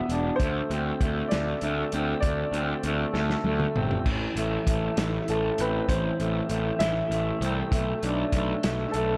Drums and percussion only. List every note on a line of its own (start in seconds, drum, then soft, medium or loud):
0.10 closed hi-hat medium
0.40 kick medium
0.40 closed hi-hat medium
0.71 closed hi-hat soft
1.01 kick medium
1.01 closed hi-hat soft
1.31 snare medium
1.31 closed hi-hat medium
1.61 closed hi-hat soft
1.92 closed hi-hat medium
2.23 kick medium
2.23 closed hi-hat medium
2.54 closed hi-hat soft
2.83 closed hi-hat medium
3.14 snare soft
3.30 snare soft
3.44 high tom medium
3.60 mid tom medium
3.76 mid tom medium
3.91 floor tom medium
4.06 kick medium
4.06 crash medium
4.37 closed hi-hat medium
4.67 kick medium
4.67 closed hi-hat medium
4.97 snare loud
4.97 closed hi-hat medium
5.28 closed hi-hat medium
5.58 closed hi-hat medium
5.89 kick medium
5.89 closed hi-hat medium
6.20 closed hi-hat soft
6.49 closed hi-hat soft
6.80 snare loud
6.80 closed hi-hat medium
7.12 closed hi-hat soft
7.42 closed hi-hat medium
7.72 kick medium
7.72 closed hi-hat medium
8.03 closed hi-hat medium
8.32 kick medium
8.32 closed hi-hat medium
8.63 snare loud
8.63 closed hi-hat medium
8.94 closed hi-hat medium